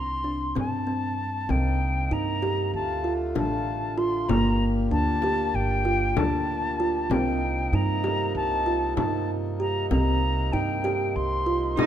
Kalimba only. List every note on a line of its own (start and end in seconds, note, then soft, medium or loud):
0.24 0.46 D4 medium
0.55 0.77 C4 medium
0.87 1.30 C4 medium
1.49 1.93 C4 medium
2.11 2.33 D#4 medium
2.42 2.86 G4 medium
3.04 3.26 F4 medium
3.35 3.79 D4 medium
3.98 4.20 F4 medium
4.29 4.73 A#3 medium
4.91 5.13 D4 medium
5.23 5.67 G4 medium
5.85 6.07 F4 medium
6.17 6.60 D4 medium
6.80 7.01 F4 medium
7.11 7.54 C4 medium
7.73 7.95 D#4 medium
8.04 8.47 G4 medium
8.66 8.88 F4 medium
8.97 9.41 D#4 medium
9.60 9.82 G4 medium
9.91 10.34 C4 medium
10.53 10.75 D#4 medium
10.84 11.28 G4 medium
11.46 11.68 F4 medium
11.77 11.86 D#4 medium